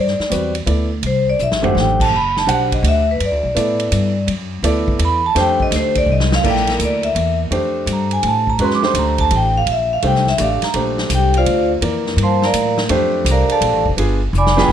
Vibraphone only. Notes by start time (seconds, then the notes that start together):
0.00 D5
1.07 C5
1.29 D5
1.43 E5
1.65 F#5
1.80 G5
2.01 A5
2.16 B5
2.38 A5
2.52 F#5
2.74 D#5
2.88 E5
3.11 B4
3.25 D5
5.05 B5
5.26 A5
5.40 G5
5.62 D#5
5.76 C5
5.98 D5
6.12 D#5
6.35 F5
6.49 G5
6.71 A#4
6.84 D5
7.04 E5
7.93 A#5
8.13 G#5
8.28 A5
8.50 A#5
8.64 C6
8.75 D6
8.86 C6
8.99 A#5
9.20 A5
9.36 G5
9.57 F5
9.72 E5
9.93 F5
10.07 G5
10.29 E5
10.43 F5
10.64 A#5
11.15 G4 G5
11.37 F4 C5 D5 F5
12.23 C5 F5 A5 C6
12.45 A#4 D5 F5 A#5
13.31 A#4 D5 F5 A#5
13.52 A4 D5 F5 A5
14.38 D5 G#5 B5 D6
14.60 B4 G5 G#5 B5